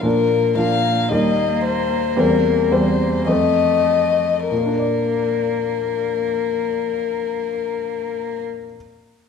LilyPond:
<<
  \new Staff \with { instrumentName = "Violin" } { \time 4/4 \key bes \major \tempo 4 = 100 bes'4 f''4 ees''4 c''4 | bes'4 c''4 ees''2 | bes'1~ | bes'1 | }
  \new Staff \with { instrumentName = "Grand piano" } { \time 4/4 \key bes \major <bes, f d' bes'>4 <bes, f d' bes'>4 <ees, g ees' bes'>2 | <e, g c' c''>4 <e, g c' c''>4 <f, a c' c''>2 | <bes, bes d' bes' d''>1~ | <bes, bes d' bes' d''>1 | }
  \new Staff \with { instrumentName = "Cello" } { \time 4/4 \key bes \major bes1~ | bes2 a4. r8 | bes1~ | bes1 | }
>>